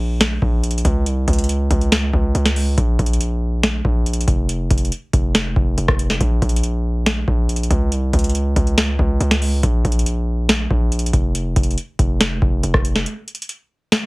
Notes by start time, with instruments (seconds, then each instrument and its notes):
Already playing: 808-style bass A#1
0.21 snare, closed hi-hat
0.42 808-style bass A#1, kick
0.64 closed hi-hat
0.71 closed hi-hat
0.78 closed hi-hat
0.85 808-style bass C#2, kick, closed hi-hat
1.06 808-style bass C2, closed hi-hat
1.28 808-style bass C#2, kick, closed hi-hat
1.33 closed hi-hat
1.39 closed hi-hat
1.44 closed hi-hat
1.49 closed hi-hat
1.71 808-style bass C#2, kick, closed hi-hat
1.81 closed hi-hat
1.92 snare, closed hi-hat
2.13 808-style bass C#2, kick
2.35 808-style bass C#2, closed hi-hat
2.46 snare, closed hi-hat
2.56 open hi-hat
2.78 808-style bass A#1, kick, closed hi-hat
2.99 808-style bass A#1, kick, closed hi-hat
3.06 closed hi-hat
3.13 closed hi-hat
3.21 closed hi-hat
3.63 snare, closed hi-hat
3.85 808-style bass A#1, kick
4.06 closed hi-hat
4.13 closed hi-hat
4.21 closed hi-hat
4.28 808-style bass F1, kick, closed hi-hat
4.49 closed hi-hat
4.71 808-style bass F1, kick, closed hi-hat
4.78 closed hi-hat
4.85 closed hi-hat
4.92 closed hi-hat
5.13 808-style bass F1, kick, closed hi-hat
5.35 snare, closed hi-hat
5.56 808-style bass F1, kick
5.78 808-style bass F1, closed hi-hat
5.88 808-style bass F1, kick, cross-stick
5.99 closed hi-hat
6.10 snare
6.21 808-style bass A#1, kick, closed hi-hat
6.42 808-style bass A#1, kick, closed hi-hat
6.49 closed hi-hat
6.56 closed hi-hat
6.63 closed hi-hat
7.06 snare, closed hi-hat
7.28 808-style bass A#1, kick
7.49 closed hi-hat
7.56 closed hi-hat
7.63 closed hi-hat
7.71 808-style bass C#2, kick, closed hi-hat
7.92 808-style bass C2, closed hi-hat
8.13 808-style bass C#2, kick, closed hi-hat
8.19 closed hi-hat
8.24 closed hi-hat
8.29 closed hi-hat
8.35 closed hi-hat
8.56 808-style bass C#2, kick, closed hi-hat
8.67 closed hi-hat
8.78 snare, closed hi-hat
8.99 808-style bass C#2, kick
9.20 808-style bass C#2, closed hi-hat
9.31 snare, closed hi-hat
9.42 open hi-hat
9.63 808-style bass A#1, kick, closed hi-hat
9.85 808-style bass A#1, kick, closed hi-hat
9.92 closed hi-hat
9.99 closed hi-hat
10.06 closed hi-hat
10.49 snare, closed hi-hat
10.71 808-style bass A#1, kick
10.92 closed hi-hat
10.99 closed hi-hat
11.06 closed hi-hat
11.13 808-style bass F1, kick, closed hi-hat
11.35 closed hi-hat
11.56 808-style bass F1, kick, closed hi-hat
11.63 closed hi-hat
11.71 closed hi-hat
11.78 closed hi-hat
11.99 808-style bass F1, kick, closed hi-hat
12.21 snare, closed hi-hat
12.42 808-style bass F1, kick
12.63 808-style bass F1, closed hi-hat
12.74 808-style bass F1, kick, cross-stick
12.85 closed hi-hat
12.96 snare
13.06 closed hi-hat
13.28 closed hi-hat
13.35 closed hi-hat
13.42 closed hi-hat
13.49 closed hi-hat
13.92 snare, closed hi-hat